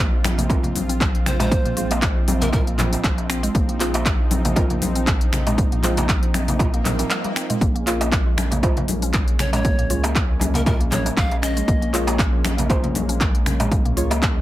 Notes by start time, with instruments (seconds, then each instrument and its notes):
Already playing: analog synth bass A#1, analog synth pad F3 C4 F4
0.00 shaker
0.24 synth pluck C4, finger snap, open hi-hat, darbuka tek, high conga, shaker
0.38 synth pluck A#3, closed hi-hat, darbuka ka, low conga, shaker
0.49 synth stab G#3 C4 F4 A#4, synth pluck F4, kick, closed hi-hat, darbuka tek, shaker
0.63 synth pluck A#3, closed hi-hat, low conga
0.76 open hi-hat, high conga, shaker
0.89 synth pluck C4, closed hi-hat, shaker
1.01 kick, clap, closed hi-hat, high conga, shaker
1.15 closed hi-hat
1.26 synth pluck C4, pan flute C5, finger snap, open hi-hat, high conga, low conga, shaker
1.40 synth pluck G#3, pan flute C5, closed hi-hat, mid tom, darbuka ka, shaker
1.51 synth pluck A#3, kick, closed hi-hat, shaker
1.65 analog synth bass A#1, synth pluck A#3, closed hi-hat, mid tom
1.77 synth stab G#3 C4 F4 C5, synth pluck F4, open hi-hat, high conga, shaker
1.91 synth pluck A#3, closed hi-hat, darbuka ka, darbuka tek, shaker
2.02 kick, clap, closed hi-hat, shaker
2.28 synth pluck C4, open hi-hat, high conga, darbuka tek, shaker
2.41 synth pluck A#3, pan flute A#4, closed hi-hat, darbuka ka, low conga, shaker
2.53 synth pluck F4, pan flute A#4, kick, closed hi-hat, mid tom, darbuka tek, shaker
2.67 synth pluck A#3, closed hi-hat
2.78 analog synth bass A#1, clap, mid tom, open hi-hat, high conga, darbuka tek, shaker
2.93 synth pluck C4, closed hi-hat, darbuka ka, shaker
3.04 analog synth bass A#1, kick, clap, closed hi-hat, shaker
3.18 closed hi-hat, darbuka ka
3.30 synth pluck C4, finger snap, open hi-hat, shaker
3.43 synth pluck G#3, closed hi-hat, shaker
3.55 analog synth bass A#1, synth pluck A#3, analog synth pad D#4, kick, closed hi-hat, shaker
3.69 synth pluck A#3, closed hi-hat
3.80 synth stab G#3 C4 F4 C5, synth pluck F4, clap, open hi-hat, shaker
3.94 synth pluck A#3, closed hi-hat, darbuka ka, darbuka tek, shaker
4.06 kick, clap, closed hi-hat, shaker
4.31 synth pluck C4, open hi-hat, high conga, darbuka tek, shaker
4.45 synth pluck A#3, closed hi-hat, darbuka ka, low conga, shaker
4.56 synth stab G#3 C4 F4 A#4, synth pluck F4, kick, closed hi-hat, darbuka tek, shaker
4.70 synth pluck A#3, closed hi-hat, low conga
4.82 open hi-hat, high conga, shaker
4.96 synth pluck C4, closed hi-hat, shaker
5.07 kick, clap, closed hi-hat, high conga, shaker
5.21 closed hi-hat
5.33 synth pluck C4, finger snap, open hi-hat, high conga, low conga, shaker
5.47 synth pluck G#3, closed hi-hat, mid tom, darbuka ka, shaker
5.58 synth pluck A#3, kick, closed hi-hat, shaker
5.72 analog synth bass A#1, synth pluck A#3, closed hi-hat, mid tom
5.83 synth stab G#3 C4 F4 C5, synth pluck F4, clap, open hi-hat, high conga, shaker
5.97 synth pluck A#3, closed hi-hat, darbuka ka, darbuka tek, low conga, shaker
6.09 kick, clap, closed hi-hat, shaker
6.23 closed hi-hat
6.34 synth pluck C4, finger snap, open hi-hat, high conga, darbuka tek, shaker
6.48 synth pluck A#3, closed hi-hat, darbuka ka, low conga, shaker
6.59 synth pluck F4, kick, closed hi-hat, mid tom, swell, darbuka tek, shaker
6.74 synth pluck A#3, closed hi-hat
6.85 analog synth bass A#1, clap, mid tom, open hi-hat, high conga, darbuka tek, shaker
6.99 synth pluck C4, closed hi-hat, darbuka ka, shaker
7.10 clap, closed hi-hat, high tom, shaker
7.24 closed hi-hat, high tom, darbuka ka
7.36 synth pluck C4, finger snap, open hi-hat, shaker
7.50 synth pluck G#3, closed hi-hat, mid tom, shaker
7.61 analog synth bass A#1, analog synth pad G#3 A#3 C#4, synth pluck A#3, kick, closed hi-hat, shaker
7.75 synth pluck A#3, closed hi-hat
7.87 synth stab A#3 F4 G#4 C#5, synth pluck F4, clap, open hi-hat, shaker
8.01 synth pluck A#3, closed hi-hat, darbuka ka, darbuka tek, shaker
8.12 kick, clap, closed hi-hat, shaker
8.37 synth pluck C#4, finger snap, open hi-hat, darbuka tek, high conga, shaker
8.51 synth pluck A#3, closed hi-hat, darbuka ka, low conga, shaker
8.63 synth stab A#3 F4 G#4 C5, synth pluck F4, kick, closed hi-hat, darbuka tek, shaker
8.77 synth pluck A#3, closed hi-hat, low conga
8.88 open hi-hat, high conga, shaker
9.02 synth pluck C#4, closed hi-hat, shaker
9.14 kick, clap, closed hi-hat, high conga, shaker
9.28 closed hi-hat
9.39 synth pluck C#4, pan flute C#5, finger snap, open hi-hat, high conga, low conga, shaker
9.53 synth pluck G#3, pan flute C#5, closed hi-hat, mid tom, darbuka ka, shaker
9.65 synth pluck A#3, kick, closed hi-hat, shaker
9.78 analog synth bass C#2, synth pluck A#3, closed hi-hat, mid tom
9.90 synth stab A#3 F4 G#4 C#5, synth pluck F4, open hi-hat, high conga, shaker
10.04 synth pluck A#3, closed hi-hat, darbuka ka, darbuka tek, shaker
10.15 kick, clap, closed hi-hat, shaker
10.40 synth pluck C#4, open hi-hat, darbuka tek, high conga, shaker
10.54 synth pluck A#3, pan flute A#4, closed hi-hat, darbuka ka, low conga, shaker
10.66 synth pluck F4, pan flute A#4, kick, closed hi-hat, mid tom, darbuka tek, shaker
10.80 synth pluck A#3, closed hi-hat
10.91 analog synth bass A#1, pan flute C#5, clap, mid tom, open hi-hat, high conga, darbuka tek, shaker
11.06 synth pluck C#4, closed hi-hat, darbuka ka, shaker
11.17 analog synth bass A#1, pan flute F5, kick, clap, closed hi-hat, shaker
11.31 closed hi-hat, darbuka ka
11.42 synth pluck C#4, pan flute D#5, finger snap, open hi-hat, shaker
11.57 synth pluck G#3, closed hi-hat, shaker
11.68 analog synth bass A#1, synth pluck A#3, kick, closed hi-hat, shaker
11.82 synth pluck A#3, closed hi-hat
11.93 synth stab A#3 F4 G#4 C#5, synth pluck F4, clap, open hi-hat, shaker
12.07 synth pluck A#3, closed hi-hat, darbuka ka, darbuka tek, shaker
12.19 kick, clap, closed hi-hat, shaker
12.44 synth pluck C#4, finger snap, open hi-hat, darbuka tek, high conga, shaker
12.58 synth pluck A#3, closed hi-hat, darbuka ka, low conga, shaker
12.69 synth stab A#3 F4 G#4 C5, synth pluck F4, kick, closed hi-hat, darbuka tek, shaker
12.83 synth pluck A#3, closed hi-hat, low conga
12.95 open hi-hat, high conga, shaker
13.09 synth pluck C#4, closed hi-hat, shaker
13.20 kick, clap, closed hi-hat, high conga, shaker
13.35 closed hi-hat
13.46 synth pluck C#4, finger snap, open hi-hat, high conga, low conga, shaker
13.60 synth pluck G#3, closed hi-hat, mid tom, darbuka ka, shaker
13.71 synth pluck A#3, kick, closed hi-hat, shaker
13.85 analog synth bass C#2, synth pluck A#3, closed hi-hat, mid tom
13.97 synth stab A#3 F4 G#4 C#5, synth pluck F4, open hi-hat, high conga, shaker
14.10 synth pluck A#3, closed hi-hat, darbuka ka, darbuka tek, shaker
14.22 kick, clap, closed hi-hat, shaker